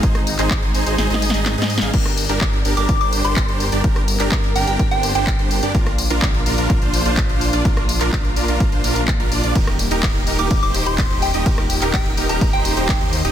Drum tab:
CC |------------------------------------------------|x-----------------------------------------------|------------------------------------------------|------------------------------------------------|
RD |------------------------------------------------|------------------------------------------------|------------------------------------------------|------------------------------------------------|
HH |x--x--o--x--x--x--o--x--x--x--o--x--x--x--o--x--|x--x--o--x--x--x--o--x--x--x--o--x--x--x--o--x--|x--x--o--x--x--x--o--x--x--x--o--x--x--x--o--x--|x--x--o--x--x--x--o--x--x--x--o--x--x--x--o--x--|
CP |---------x--x-----------------------x-----------|------------x-----------------------x-----------|---------x--x-----------------------x-----------|------------x-----------------------x-----------|
SD |---r--------------------o---o---o---o---o---o---|---r--------------------------------------------|---r--------------------------------------------|---r--------------------------------------------|
BD |o-----------o-----------------------------------|o-----------o-----------o-----------o-----------|o-----------o-----------o-----------o-----------|o-----------o-----------o-----------o-----------|

CC |------------------------------------------------|------------------------------------------------|------------------------------------------------|
RD |------------------------------------------------|x-----------x-----------x-----------x-----------|x-----------x-----------x-----------x-----------|
HH |x--x--o--x--x--x--o--x--x--x--o--x--x--x--o--x--|x--x--o--x--x--x--o--x--x--x--o--x--x--x--o--x--|x--x--o--x--x--x--o--x--x--x--o--x--x--x--o--x--|
CP |---------x--x-----------------------x-----------|------------x-----------------------x-----------|---------x--x-----------------------x-----------|
SD |---r--------------------------------------------|---r--------------------------------------------|---r--------------------------------------------|
BD |o-----------o-----------o-----------o-----------|o-----------o-----------o-----------o-----------|o-----------o-----------o-----------o-----------|